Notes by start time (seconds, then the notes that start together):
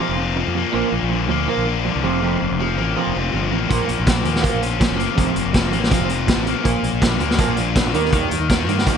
Already playing: F2 F3 A#3
0.00 F2 C3 F3 F4
0.09 F1
0.19 F2 C3 C4
0.36 F2 C3 F3
0.47 F2
0.55 F2 C3 A#3
0.72 A#1 A#2 F3 A#3
0.92 A#1 A#2 F3
1.03 A#1
1.10 A#2 D3 F3
1.28 D2 A#2 F3 A#3
1.48 A#2 F3 A#3 F4
1.57 A#1
1.66 A#2 F3 D4
1.84 A#2 D3 F3
1.95 C2
2.03 F1 F2 C3 F3
2.22 F2 C3 F3
2.42 F1 F2 C3
2.51 F1
2.60 F2 C3 F3
2.78 A1 F2 C3 A#3
2.96 F2 C3 F3 F4
3.07 F1
3.15 F1 F2 C3 C4
3.33 G1 F2 C3 F3
3.51 A1 F2 C3 A#3
3.70 A#1 A#2 F3 A#3, kick, closed hi-hat
3.87 A#1 A#2 F3, closed hi-hat
3.99 A#1
4.06 A#2 F3, kick, snare, closed hi-hat
4.23 D#2 A#2 F3 A#3, closed hi-hat
4.36 snare
4.41 A#2 F3 A#3 F4, kick, closed hi-hat
4.53 A#1
4.61 A#2 F3 C#4, closed hi-hat
4.80 A#2 F3, kick, snare, closed hi-hat
4.90 F#1
4.97 A#2 F3 A#3, closed hi-hat
5.15 F1 F2 C3 F3, kick, closed hi-hat
5.34 F1 F2 C3, closed hi-hat
5.46 F1
5.53 F2 C3 F3, kick, snare, closed hi-hat
5.72 A1 F2 C3 A#3, closed hi-hat
5.84 snare
5.90 F2 C3 F3 F4, kick, closed hi-hat
5.99 F1
6.09 F2 C3 C4, closed hi-hat
6.27 F2 C3 F3, kick, snare, closed hi-hat
6.36 A1
6.46 F2 C3 A#3, closed hi-hat
6.64 A#1 A#2 F3 A#3, kick, closed hi-hat
6.83 A#1 A#2 F3, closed hi-hat
6.93 A#1
7.02 A#2 D3 F3, kick, snare, closed hi-hat
7.20 D2 A#2 F3 A#3, closed hi-hat
7.31 snare
7.38 A#2 F3 A#3 F4, kick, closed hi-hat
7.48 A#1
7.56 A#2 F3 D4, closed hi-hat
7.75 A#2 D3 F3, kick, snare, closed hi-hat
7.84 A#1
7.94 D#2 D#3 G3 A#3, closed hi-hat
8.05 snare
8.12 D#3 G3 A#3, kick, closed hi-hat
8.31 D#2 D#3 G3, closed hi-hat
8.40 D#2
8.49 D#3 G3, kick, snare, closed hi-hat
8.67 G2 D#3 G3 A#3, closed hi-hat
8.78 snare
8.86 D#3 G3 A#3 G4, kick, closed hi-hat